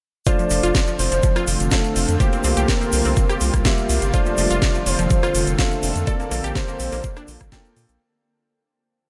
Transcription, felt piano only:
0.27 1.69 A3 medium
0.27 1.69 D4 medium
0.27 1.69 F4 medium
0.27 1.69 C5 medium
1.72 2.17 A3 medium
1.72 2.17 D4 medium
1.72 2.17 F4 medium
1.72 2.17 F5 medium
2.20 3.63 A#3 medium
2.20 3.63 F4 medium
2.20 3.63 G4 medium
2.20 3.63 C5 medium
3.65 4.11 A#3 medium
3.65 4.11 F4 medium
3.65 4.11 G4 medium
3.65 4.11 E5 medium
4.14 5.56 A3 medium
4.14 5.56 D4 medium
4.14 5.56 F4 medium
4.14 5.56 C5 medium
5.59 6.04 A3 medium
5.59 6.04 D4 medium
5.59 6.04 F4 medium
5.59 6.04 F5 medium
6.07 7.50 A#3 medium
6.07 7.50 F4 medium
6.07 7.50 A4 medium
6.07 7.50 D5 medium
7.52 7.98 A#3 medium
7.52 7.98 F4 medium
7.52 7.98 A4 medium
7.52 7.98 G5 medium

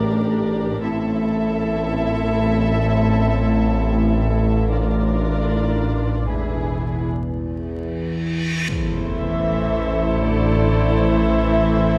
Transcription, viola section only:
0.00 0.79 D4 soft
0.00 0.79 G4 soft
0.84 4.67 C4 soft
0.84 4.67 E4 soft
4.71 7.06 D4 soft
4.71 6.25 F4 soft
6.30 7.06 E4 soft
8.69 11.98 A3 soft
8.69 11.98 E4 soft

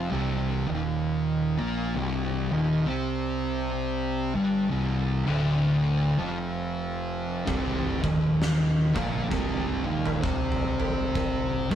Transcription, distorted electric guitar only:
0.00 0.10 F2 medium
0.00 0.11 F3 loud
0.11 0.66 C2 loud
0.11 0.66 C3 loud
0.67 1.57 D#2 medium
0.67 1.58 D#3 loud
1.58 1.94 A#2 medium
1.58 1.94 A#3 loud
1.95 2.50 C2 medium
1.95 2.50 C3 loud
2.51 2.86 D#2 medium
2.51 2.86 D#3 loud
2.86 4.33 C3 loud
2.86 4.33 C4 loud
4.34 4.69 G2 medium
4.34 4.70 G3 loud
4.70 5.27 C2 medium
4.70 5.28 C3 loud
5.27 6.17 D2 medium
5.27 6.18 D3 medium
6.18 7.45 F2 medium
6.18 7.46 F3 medium
7.46 8.01 C2 loud
7.46 8.01 C3 loud
8.02 8.93 D#2 medium
8.02 8.93 D#3 loud
8.94 9.29 A#2 medium
8.94 9.30 A#3 medium
9.29 9.84 C2 medium
9.29 9.85 C3 loud
9.86 10.21 D#2 medium
9.86 10.21 D#3 loud
10.22 11.69 C3 loud
10.22 11.69 C4 medium
11.70 11.75 G2 medium
11.70 11.75 G3 loud

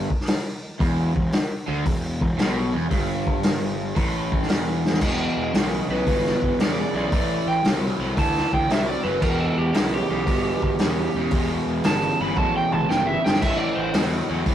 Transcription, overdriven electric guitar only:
0.79 1.13 E2 loud
1.15 1.29 E2 medium
1.68 1.84 D3 medium
1.85 2.14 E2 medium
2.20 2.34 E2 medium
2.38 2.73 B2 loud
2.73 2.90 E2 medium
2.90 3.95 G2 loud
3.95 4.48 A2 loud
4.48 4.99 E2 loud
5.01 5.50 E2 medium
5.01 5.51 B2 medium
5.54 5.86 E2 medium
5.54 5.87 C#3 medium
5.90 6.05 E2 medium
5.90 6.05 C#3 medium
6.06 6.56 E2 medium
6.06 6.56 B2 medium
6.60 6.92 E2 medium
6.60 6.92 C#3 medium
6.95 7.10 E2 medium
6.95 7.11 C#3 medium
7.12 7.62 A2 medium
7.12 7.62 E3 medium
7.65 7.97 A2 medium
7.65 7.98 F#3 medium
8.00 8.15 A2 medium
8.00 8.16 F#3 medium
8.16 8.66 A2 medium
8.16 8.66 E3 loud
8.69 9.02 A2 medium
8.69 9.02 F#3 medium
9.04 9.20 A2 medium
9.04 9.20 F#3 medium
9.20 9.70 E2 medium
9.20 9.71 B2 medium
9.73 10.06 E2 medium
9.73 10.06 C#3 loud
10.09 10.24 E2 medium
10.09 10.25 C#3 medium
10.25 10.76 E2 medium
10.25 10.76 B2 medium
10.79 11.12 E2 medium
10.79 11.12 C#3 medium
11.16 11.31 E2 medium
11.16 11.31 C#3 medium
11.32 11.81 E2 medium
11.32 11.81 B2 medium
11.83 12.16 E2 medium
11.83 12.17 C#3 medium
12.20 12.35 E2 medium
12.20 12.36 C#3 medium
12.38 12.86 E2 medium
12.38 12.86 B2 loud
12.89 13.21 E2 medium
12.89 13.21 C#3 medium
13.25 13.40 E2 medium
13.25 13.40 C#3 medium
13.42 13.91 A2 medium
13.42 13.91 E3 medium
13.94 14.26 A2 medium
13.94 14.26 F#3 medium
14.29 14.44 A2 medium
14.29 14.45 F#3 medium
14.46 14.55 A2 medium
14.46 14.55 E3 medium

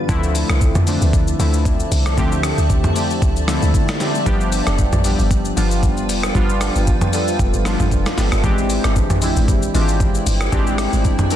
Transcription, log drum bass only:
0.09 0.44 D2 loud
0.49 0.72 C2 medium
0.75 0.98 F2 medium
1.02 1.34 D2 medium
1.39 1.85 D2 loud
1.91 2.19 C2 loud
2.18 2.53 D2 loud
2.58 2.91 D2 medium
3.22 3.38 C2 loud
3.36 3.59 D2 medium
3.62 3.73 D2 medium
4.26 4.61 G1 loud
4.67 4.89 F1 medium
4.93 5.16 A1 medium
5.19 5.52 G1 loud
5.57 6.10 G1 medium
6.09 6.32 F1 loud
6.35 6.70 G1 loud
6.75 7.08 G1 medium
7.39 7.52 F1 loud
7.54 7.76 G1 medium
7.80 7.90 G1 medium
7.91 8.04 F1 medium
8.18 8.30 G1 loud
8.32 8.42 G1 loud
8.44 8.79 G#1 loud
8.84 9.12 G1 medium
9.10 9.33 A1 medium
9.36 9.69 G#1 loud
9.74 10.20 G#1 medium
10.26 10.49 G1 loud
10.52 10.88 G#1 loud
10.93 11.26 G#1 medium

